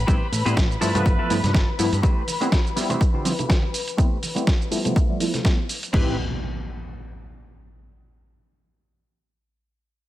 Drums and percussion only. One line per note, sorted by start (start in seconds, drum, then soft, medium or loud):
0.08 kick loud
0.08 closed hi-hat soft
0.08 cabasa soft
0.22 tambourine soft
0.32 open hi-hat loud
0.32 high conga medium
0.32 cabasa medium
0.46 closed hi-hat medium
0.46 tambourine medium
0.46 cabasa soft
0.57 kick loud
0.57 snare loud
0.57 closed hi-hat medium
0.57 cabasa soft
0.70 tambourine soft
0.70 cabasa soft
0.82 open hi-hat loud
0.82 cabasa medium
0.94 closed hi-hat medium
0.94 tambourine medium
0.94 high conga medium
0.94 low conga medium
0.94 cabasa soft
1.06 kick loud
1.06 closed hi-hat medium
1.06 cabasa soft
1.19 tambourine soft
1.30 open hi-hat loud
1.30 cabasa medium
1.44 snare soft
1.44 closed hi-hat medium
1.44 tambourine medium
1.44 low conga medium
1.44 cabasa soft
1.54 kick loud
1.54 snare loud
1.54 closed hi-hat medium
1.54 cabasa soft
1.79 open hi-hat loud
1.79 cabasa medium
1.93 closed hi-hat medium
1.93 tambourine medium
1.93 cabasa soft
2.03 kick loud
2.03 closed hi-hat soft
2.03 cabasa soft
2.27 open hi-hat loud
2.27 high conga medium
2.27 cabasa medium
2.41 closed hi-hat medium
2.41 cabasa soft
2.52 kick loud
2.52 snare loud
2.52 closed hi-hat medium
2.52 cabasa soft
2.66 cabasa soft
2.77 snare soft
2.77 open hi-hat loud
2.77 cabasa medium
2.90 closed hi-hat medium
2.90 tambourine medium
2.90 high conga medium
2.90 low conga medium
2.90 cabasa soft
3.01 kick loud
3.01 closed hi-hat medium
3.01 cabasa soft
3.25 open hi-hat loud
3.25 cabasa medium
3.39 closed hi-hat medium
3.39 tambourine medium
3.39 low conga loud
3.39 cabasa soft
3.50 kick loud
3.50 snare loud
3.50 closed hi-hat medium
3.50 tambourine medium
3.50 cabasa soft
3.64 tambourine soft
3.74 open hi-hat loud
3.74 cabasa medium
3.88 closed hi-hat medium
3.88 tambourine medium
3.88 cabasa soft
3.98 kick loud
3.98 closed hi-hat soft
3.98 cabasa soft
4.23 open hi-hat loud
4.23 high conga medium
4.23 cabasa medium
4.36 closed hi-hat medium
4.36 tambourine medium
4.36 cabasa soft
4.47 kick loud
4.47 snare loud
4.47 closed hi-hat medium
4.47 cabasa soft
4.62 cabasa soft
4.72 open hi-hat loud
4.72 cabasa medium
4.85 closed hi-hat medium
4.85 tambourine medium
4.85 high conga medium
4.85 low conga medium
4.85 cabasa soft
4.96 kick loud
4.96 closed hi-hat medium
4.96 cabasa soft
5.20 open hi-hat loud
5.20 cabasa medium
5.34 snare soft
5.34 closed hi-hat medium
5.34 tambourine medium
5.34 low conga medium
5.34 cabasa soft
5.45 kick loud
5.45 snare loud
5.45 closed hi-hat soft
5.45 tambourine medium
5.45 cabasa soft
5.69 open hi-hat loud
5.69 cabasa medium
5.82 closed hi-hat medium
5.82 tambourine medium
5.82 cabasa soft
5.94 kick loud
5.94 crash medium